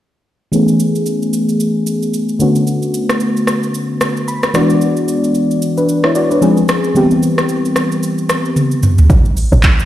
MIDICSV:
0, 0, Header, 1, 4, 480
1, 0, Start_track
1, 0, Key_signature, 3, "major"
1, 0, Tempo, 535714
1, 472, Time_signature, 4, 2, 24, 8
1, 8827, End_track
2, 0, Start_track
2, 0, Title_t, "FM electric piano"
2, 0, Program_c, 0, 5
2, 463, Note_on_c, 0, 52, 71
2, 469, Note_on_c, 0, 57, 67
2, 474, Note_on_c, 0, 59, 66
2, 479, Note_on_c, 0, 61, 64
2, 485, Note_on_c, 0, 68, 80
2, 653, Control_c, 0, 64, 127
2, 2114, Note_off_c, 0, 52, 0
2, 2117, Note_off_c, 0, 57, 0
2, 2120, Note_off_c, 0, 59, 0
2, 2122, Note_off_c, 0, 61, 0
2, 2125, Note_off_c, 0, 68, 0
2, 2144, Note_on_c, 0, 50, 72
2, 2149, Note_on_c, 0, 57, 61
2, 2155, Note_on_c, 0, 59, 62
2, 2160, Note_on_c, 0, 61, 62
2, 2162, Control_c, 0, 64, 0
2, 2166, Note_on_c, 0, 66, 74
2, 2339, Control_c, 0, 64, 127
2, 3834, Note_on_c, 0, 83, 71
2, 4032, Note_off_c, 0, 50, 0
2, 4035, Note_off_c, 0, 57, 0
2, 4038, Note_off_c, 0, 59, 0
2, 4041, Note_off_c, 0, 61, 0
2, 4043, Note_off_c, 0, 66, 0
2, 4057, Note_off_c, 0, 83, 0
2, 4064, Note_on_c, 0, 52, 72
2, 4069, Note_on_c, 0, 56, 65
2, 4074, Note_on_c, 0, 59, 65
2, 4074, Note_on_c, 0, 74, 72
2, 4079, Note_on_c, 0, 62, 64
2, 4084, Control_c, 0, 64, 0
2, 4085, Note_on_c, 0, 66, 81
2, 4227, Control_c, 0, 64, 127
2, 4297, Note_off_c, 0, 74, 0
2, 5017, Note_off_c, 0, 62, 0
2, 5019, Note_off_c, 0, 66, 0
2, 5175, Note_on_c, 0, 71, 60
2, 5180, Note_on_c, 0, 62, 54
2, 5401, Note_off_c, 0, 71, 0
2, 5404, Note_off_c, 0, 62, 0
2, 5414, Note_on_c, 0, 73, 69
2, 5419, Note_on_c, 0, 64, 60
2, 5509, Note_off_c, 0, 73, 0
2, 5511, Note_off_c, 0, 64, 0
2, 5515, Note_on_c, 0, 74, 71
2, 5520, Note_on_c, 0, 66, 59
2, 5646, Note_off_c, 0, 74, 0
2, 5648, Note_off_c, 0, 66, 0
2, 5653, Note_on_c, 0, 71, 60
2, 5658, Note_on_c, 0, 62, 52
2, 5714, Note_off_c, 0, 52, 0
2, 5717, Note_off_c, 0, 56, 0
2, 5720, Note_off_c, 0, 59, 0
2, 5747, Note_on_c, 0, 53, 69
2, 5750, Note_on_c, 0, 56, 69
2, 5753, Note_on_c, 0, 60, 68
2, 5755, Note_on_c, 0, 61, 64
2, 5758, Note_on_c, 0, 68, 80
2, 5765, Control_c, 0, 64, 0
2, 5880, Note_off_c, 0, 71, 0
2, 5883, Note_off_c, 0, 62, 0
2, 5933, Control_c, 0, 64, 127
2, 6222, Note_on_c, 0, 50, 59
2, 6227, Note_on_c, 0, 55, 68
2, 6228, Note_off_c, 0, 60, 0
2, 6230, Note_off_c, 0, 53, 0
2, 6231, Note_off_c, 0, 56, 0
2, 6233, Note_on_c, 0, 59, 67
2, 6234, Note_off_c, 0, 61, 0
2, 6235, Note_off_c, 0, 68, 0
2, 6238, Note_on_c, 0, 60, 70
2, 6242, Control_c, 0, 64, 0
2, 6244, Note_on_c, 0, 67, 82
2, 6280, Note_on_c, 0, 52, 75
2, 6294, Note_off_c, 0, 50, 0
2, 6429, Control_c, 0, 64, 127
2, 8114, Note_off_c, 0, 55, 0
2, 8117, Note_off_c, 0, 59, 0
2, 8120, Note_off_c, 0, 60, 0
2, 8122, Note_off_c, 0, 67, 0
2, 8140, Note_off_c, 0, 52, 0
2, 8163, Control_c, 0, 64, 0
2, 8827, End_track
3, 0, Start_track
3, 0, Title_t, "Log drum bass"
3, 0, Program_c, 1, 39
3, 8152, Note_on_c, 1, 33, 109
3, 8502, Note_off_c, 1, 33, 0
3, 8531, Note_on_c, 1, 33, 108
3, 8827, Note_off_c, 1, 33, 0
3, 8827, End_track
4, 0, Start_track
4, 0, Title_t, "Drums"
4, 474, Note_on_c, 9, 82, 66
4, 563, Note_off_c, 9, 82, 0
4, 611, Note_on_c, 9, 82, 49
4, 700, Note_off_c, 9, 82, 0
4, 715, Note_on_c, 9, 82, 83
4, 804, Note_off_c, 9, 82, 0
4, 855, Note_on_c, 9, 82, 53
4, 944, Note_off_c, 9, 82, 0
4, 950, Note_on_c, 9, 82, 62
4, 1040, Note_off_c, 9, 82, 0
4, 1097, Note_on_c, 9, 82, 49
4, 1186, Note_off_c, 9, 82, 0
4, 1194, Note_on_c, 9, 82, 89
4, 1284, Note_off_c, 9, 82, 0
4, 1334, Note_on_c, 9, 82, 48
4, 1423, Note_off_c, 9, 82, 0
4, 1434, Note_on_c, 9, 82, 77
4, 1524, Note_off_c, 9, 82, 0
4, 1672, Note_on_c, 9, 82, 85
4, 1762, Note_off_c, 9, 82, 0
4, 1814, Note_on_c, 9, 82, 47
4, 1904, Note_off_c, 9, 82, 0
4, 1914, Note_on_c, 9, 82, 75
4, 2004, Note_off_c, 9, 82, 0
4, 2049, Note_on_c, 9, 82, 50
4, 2139, Note_off_c, 9, 82, 0
4, 2150, Note_on_c, 9, 82, 88
4, 2239, Note_off_c, 9, 82, 0
4, 2288, Note_on_c, 9, 82, 64
4, 2378, Note_off_c, 9, 82, 0
4, 2393, Note_on_c, 9, 82, 65
4, 2482, Note_off_c, 9, 82, 0
4, 2530, Note_on_c, 9, 82, 47
4, 2620, Note_off_c, 9, 82, 0
4, 2635, Note_on_c, 9, 82, 85
4, 2724, Note_off_c, 9, 82, 0
4, 2773, Note_on_c, 9, 37, 89
4, 2775, Note_on_c, 9, 82, 57
4, 2862, Note_off_c, 9, 37, 0
4, 2864, Note_off_c, 9, 82, 0
4, 2869, Note_on_c, 9, 82, 65
4, 2959, Note_off_c, 9, 82, 0
4, 3017, Note_on_c, 9, 82, 49
4, 3107, Note_off_c, 9, 82, 0
4, 3112, Note_on_c, 9, 37, 82
4, 3116, Note_on_c, 9, 82, 84
4, 3202, Note_off_c, 9, 37, 0
4, 3205, Note_off_c, 9, 82, 0
4, 3255, Note_on_c, 9, 82, 48
4, 3344, Note_off_c, 9, 82, 0
4, 3354, Note_on_c, 9, 82, 80
4, 3444, Note_off_c, 9, 82, 0
4, 3592, Note_on_c, 9, 37, 93
4, 3592, Note_on_c, 9, 82, 86
4, 3681, Note_off_c, 9, 82, 0
4, 3682, Note_off_c, 9, 37, 0
4, 3734, Note_on_c, 9, 82, 47
4, 3824, Note_off_c, 9, 82, 0
4, 3835, Note_on_c, 9, 82, 74
4, 3924, Note_off_c, 9, 82, 0
4, 3970, Note_on_c, 9, 82, 50
4, 3972, Note_on_c, 9, 37, 86
4, 4059, Note_off_c, 9, 82, 0
4, 4061, Note_off_c, 9, 37, 0
4, 4071, Note_on_c, 9, 82, 88
4, 4075, Note_on_c, 9, 37, 97
4, 4160, Note_off_c, 9, 82, 0
4, 4165, Note_off_c, 9, 37, 0
4, 4209, Note_on_c, 9, 82, 60
4, 4299, Note_off_c, 9, 82, 0
4, 4313, Note_on_c, 9, 82, 64
4, 4402, Note_off_c, 9, 82, 0
4, 4450, Note_on_c, 9, 82, 46
4, 4540, Note_off_c, 9, 82, 0
4, 4554, Note_on_c, 9, 82, 91
4, 4644, Note_off_c, 9, 82, 0
4, 4694, Note_on_c, 9, 82, 54
4, 4784, Note_off_c, 9, 82, 0
4, 4790, Note_on_c, 9, 82, 65
4, 4879, Note_off_c, 9, 82, 0
4, 4937, Note_on_c, 9, 82, 50
4, 5027, Note_off_c, 9, 82, 0
4, 5036, Note_on_c, 9, 82, 89
4, 5126, Note_off_c, 9, 82, 0
4, 5174, Note_on_c, 9, 82, 48
4, 5264, Note_off_c, 9, 82, 0
4, 5275, Note_on_c, 9, 82, 75
4, 5365, Note_off_c, 9, 82, 0
4, 5410, Note_on_c, 9, 37, 89
4, 5500, Note_off_c, 9, 37, 0
4, 5512, Note_on_c, 9, 82, 85
4, 5601, Note_off_c, 9, 82, 0
4, 5654, Note_on_c, 9, 82, 48
4, 5744, Note_off_c, 9, 82, 0
4, 5753, Note_on_c, 9, 82, 76
4, 5843, Note_off_c, 9, 82, 0
4, 5888, Note_on_c, 9, 82, 50
4, 5978, Note_off_c, 9, 82, 0
4, 5989, Note_on_c, 9, 82, 87
4, 5994, Note_on_c, 9, 37, 96
4, 6079, Note_off_c, 9, 82, 0
4, 6083, Note_off_c, 9, 37, 0
4, 6128, Note_on_c, 9, 82, 59
4, 6218, Note_off_c, 9, 82, 0
4, 6233, Note_on_c, 9, 82, 68
4, 6322, Note_off_c, 9, 82, 0
4, 6370, Note_on_c, 9, 82, 49
4, 6459, Note_off_c, 9, 82, 0
4, 6474, Note_on_c, 9, 82, 86
4, 6564, Note_off_c, 9, 82, 0
4, 6613, Note_on_c, 9, 37, 82
4, 6615, Note_on_c, 9, 82, 54
4, 6702, Note_off_c, 9, 37, 0
4, 6704, Note_off_c, 9, 82, 0
4, 6709, Note_on_c, 9, 82, 65
4, 6799, Note_off_c, 9, 82, 0
4, 6856, Note_on_c, 9, 82, 50
4, 6946, Note_off_c, 9, 82, 0
4, 6951, Note_on_c, 9, 37, 89
4, 6955, Note_on_c, 9, 82, 86
4, 7041, Note_off_c, 9, 37, 0
4, 7044, Note_off_c, 9, 82, 0
4, 7094, Note_on_c, 9, 82, 47
4, 7184, Note_off_c, 9, 82, 0
4, 7194, Note_on_c, 9, 82, 80
4, 7284, Note_off_c, 9, 82, 0
4, 7330, Note_on_c, 9, 82, 54
4, 7420, Note_off_c, 9, 82, 0
4, 7431, Note_on_c, 9, 82, 88
4, 7432, Note_on_c, 9, 37, 95
4, 7521, Note_off_c, 9, 82, 0
4, 7522, Note_off_c, 9, 37, 0
4, 7573, Note_on_c, 9, 82, 49
4, 7663, Note_off_c, 9, 82, 0
4, 7671, Note_on_c, 9, 48, 52
4, 7674, Note_on_c, 9, 82, 73
4, 7761, Note_off_c, 9, 48, 0
4, 7763, Note_off_c, 9, 82, 0
4, 7809, Note_on_c, 9, 82, 51
4, 7898, Note_off_c, 9, 82, 0
4, 7910, Note_on_c, 9, 82, 86
4, 7912, Note_on_c, 9, 45, 87
4, 7999, Note_off_c, 9, 82, 0
4, 8002, Note_off_c, 9, 45, 0
4, 8049, Note_on_c, 9, 82, 59
4, 8052, Note_on_c, 9, 43, 81
4, 8138, Note_off_c, 9, 82, 0
4, 8141, Note_off_c, 9, 43, 0
4, 8152, Note_on_c, 9, 36, 119
4, 8153, Note_on_c, 9, 82, 71
4, 8242, Note_off_c, 9, 36, 0
4, 8242, Note_off_c, 9, 82, 0
4, 8291, Note_on_c, 9, 82, 52
4, 8380, Note_off_c, 9, 82, 0
4, 8394, Note_on_c, 9, 46, 54
4, 8394, Note_on_c, 9, 82, 89
4, 8484, Note_off_c, 9, 46, 0
4, 8484, Note_off_c, 9, 82, 0
4, 8535, Note_on_c, 9, 82, 58
4, 8624, Note_off_c, 9, 82, 0
4, 8630, Note_on_c, 9, 39, 93
4, 8630, Note_on_c, 9, 82, 67
4, 8634, Note_on_c, 9, 36, 89
4, 8719, Note_off_c, 9, 39, 0
4, 8719, Note_off_c, 9, 82, 0
4, 8724, Note_off_c, 9, 36, 0
4, 8777, Note_on_c, 9, 82, 52
4, 8827, Note_off_c, 9, 82, 0
4, 8827, End_track
0, 0, End_of_file